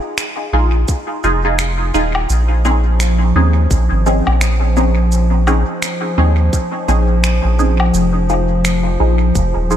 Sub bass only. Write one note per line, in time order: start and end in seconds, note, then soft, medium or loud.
0.53 0.85 A#1 loud
1.24 1.92 F1 medium
1.94 2.26 D#1 medium
2.30 3.33 A#1 loud
3.35 3.67 D#2 loud
3.71 3.89 A#1 medium
3.92 4.22 G#1 loud
4.27 5.64 A#1 loud
6.18 6.50 D#2 medium
6.88 7.40 A#1 loud
7.44 7.91 A#1 medium
7.94 8.97 F1 loud
9.00 9.32 A#1 loud
9.35 9.54 F1 medium
9.56 9.77 D#1 medium